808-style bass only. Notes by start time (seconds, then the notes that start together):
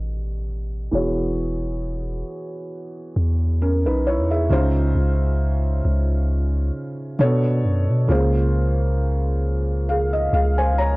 Already playing: A1
0.93 E1
3.16 E2
3.85 B1
4.18 E2
4.51 C#2
4.95 C#2
5.85 C#2
7.19 B2
7.64 F#2
7.88 B2
8.09 C#2
10.33 C#2